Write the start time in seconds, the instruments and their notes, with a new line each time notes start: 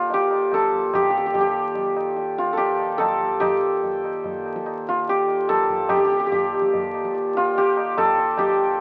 Already playing: harmonium D#2 A#2, santur F4 G4 A4
0.10 santur G4, tabla tin
0.31 tabla na
0.52 santur A4, tabla na, tabla ge
0.72 tabla ge
0.93 harmonium D#2 A#2, santur G4, tabla na, tabla ge
1.02 santur G4
1.10 santur G4
1.17 santur G4
1.26 santur G4
1.34 santur G4, tabla tin, tabla ge
1.41 santur G4
1.75 tabla tin, tabla ge
1.97 tabla na
2.17 tabla te
2.38 santur F4, tabla te
2.53 santur A4
2.57 santur G4, tabla tin
2.79 tabla na
2.98 santur A4, tabla na, tabla ge
3.20 tabla ge
3.40 santur G4, tabla na, tabla ge
3.83 tabla tin, tabla ge
4.04 tabla na
4.24 tabla tin, tabla ge
4.46 tabla na
4.56 tabla ke
4.66 tabla na
4.88 santur F4
5.07 santur G4, tabla tin
5.28 tabla na
5.49 santur A4, tabla na, tabla ge
5.69 tabla ge
5.89 harmonium D#2 A#2, santur G4, tabla na, tabla ge
5.97 santur G4
6.05 santur G4
6.12 santur G4
6.20 santur G4
6.26 santur G4
6.32 santur G4, tabla tin, tabla ge
6.53 tabla na
6.62 tabla ke
6.74 tabla tin, tabla ge
6.94 tabla na
7.05 tabla ke
7.15 tabla te
7.35 santur F4, tabla te
7.55 santur G4, tabla tin
7.77 tabla na
7.97 santur A4, tabla na, tabla ge
8.17 tabla te
8.37 santur G4, tabla na, tabla ge